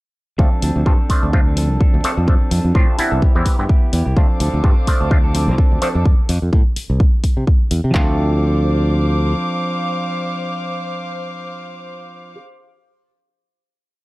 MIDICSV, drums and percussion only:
0, 0, Header, 1, 2, 480
1, 0, Start_track
1, 0, Key_signature, -1, "minor"
1, 0, Tempo, 472441
1, 396, Time_signature, 4, 2, 24, 8
1, 14267, End_track
2, 0, Start_track
2, 0, Title_t, "Drums"
2, 395, Note_on_c, 9, 36, 106
2, 497, Note_off_c, 9, 36, 0
2, 634, Note_on_c, 9, 46, 96
2, 736, Note_off_c, 9, 46, 0
2, 875, Note_on_c, 9, 36, 118
2, 976, Note_off_c, 9, 36, 0
2, 1115, Note_on_c, 9, 36, 58
2, 1115, Note_on_c, 9, 46, 84
2, 1216, Note_off_c, 9, 36, 0
2, 1217, Note_off_c, 9, 46, 0
2, 1355, Note_on_c, 9, 36, 109
2, 1456, Note_off_c, 9, 36, 0
2, 1594, Note_on_c, 9, 46, 97
2, 1696, Note_off_c, 9, 46, 0
2, 1834, Note_on_c, 9, 36, 115
2, 1936, Note_off_c, 9, 36, 0
2, 2074, Note_on_c, 9, 46, 88
2, 2175, Note_off_c, 9, 46, 0
2, 2314, Note_on_c, 9, 36, 113
2, 2416, Note_off_c, 9, 36, 0
2, 2554, Note_on_c, 9, 46, 97
2, 2655, Note_off_c, 9, 46, 0
2, 2794, Note_on_c, 9, 36, 124
2, 2896, Note_off_c, 9, 36, 0
2, 3034, Note_on_c, 9, 46, 90
2, 3135, Note_off_c, 9, 46, 0
2, 3274, Note_on_c, 9, 36, 110
2, 3375, Note_off_c, 9, 36, 0
2, 3512, Note_on_c, 9, 46, 104
2, 3513, Note_on_c, 9, 36, 61
2, 3614, Note_off_c, 9, 46, 0
2, 3615, Note_off_c, 9, 36, 0
2, 3753, Note_on_c, 9, 36, 117
2, 3855, Note_off_c, 9, 36, 0
2, 3992, Note_on_c, 9, 46, 85
2, 4094, Note_off_c, 9, 46, 0
2, 4232, Note_on_c, 9, 36, 118
2, 4334, Note_off_c, 9, 36, 0
2, 4473, Note_on_c, 9, 46, 101
2, 4574, Note_off_c, 9, 46, 0
2, 4712, Note_on_c, 9, 36, 120
2, 4814, Note_off_c, 9, 36, 0
2, 4952, Note_on_c, 9, 36, 60
2, 4952, Note_on_c, 9, 46, 95
2, 5053, Note_off_c, 9, 46, 0
2, 5054, Note_off_c, 9, 36, 0
2, 5192, Note_on_c, 9, 36, 117
2, 5294, Note_off_c, 9, 36, 0
2, 5432, Note_on_c, 9, 46, 101
2, 5534, Note_off_c, 9, 46, 0
2, 5672, Note_on_c, 9, 36, 116
2, 5774, Note_off_c, 9, 36, 0
2, 5911, Note_on_c, 9, 46, 92
2, 6013, Note_off_c, 9, 46, 0
2, 6152, Note_on_c, 9, 36, 115
2, 6253, Note_off_c, 9, 36, 0
2, 6391, Note_on_c, 9, 46, 105
2, 6492, Note_off_c, 9, 46, 0
2, 6632, Note_on_c, 9, 36, 122
2, 6733, Note_off_c, 9, 36, 0
2, 6872, Note_on_c, 9, 46, 92
2, 6974, Note_off_c, 9, 46, 0
2, 7112, Note_on_c, 9, 36, 127
2, 7214, Note_off_c, 9, 36, 0
2, 7352, Note_on_c, 9, 46, 103
2, 7353, Note_on_c, 9, 36, 62
2, 7454, Note_off_c, 9, 36, 0
2, 7454, Note_off_c, 9, 46, 0
2, 7594, Note_on_c, 9, 36, 121
2, 7695, Note_off_c, 9, 36, 0
2, 7833, Note_on_c, 9, 46, 94
2, 7934, Note_off_c, 9, 46, 0
2, 8074, Note_on_c, 9, 36, 98
2, 8075, Note_on_c, 9, 39, 83
2, 8176, Note_off_c, 9, 36, 0
2, 8176, Note_off_c, 9, 39, 0
2, 14267, End_track
0, 0, End_of_file